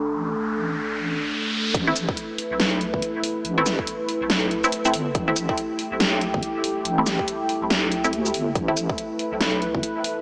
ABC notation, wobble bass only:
X:1
M:4/4
L:1/16
Q:"Swing 16ths" 1/4=141
K:C
V:1 name="Wobble bass" clef=bass
A,,,12 z4 | A,,,3 z4 B,,,4 G,,, z4 | A,,,3 z4 B,,,4 z3 G,,,2 | A,,,3 z4 B,,,4 G,,, z4 |
A,,,3 z4 B,,,4- B,,, D,,2 G,,,2 | A,,,3 z4 B,,,4 G,,, z4 |]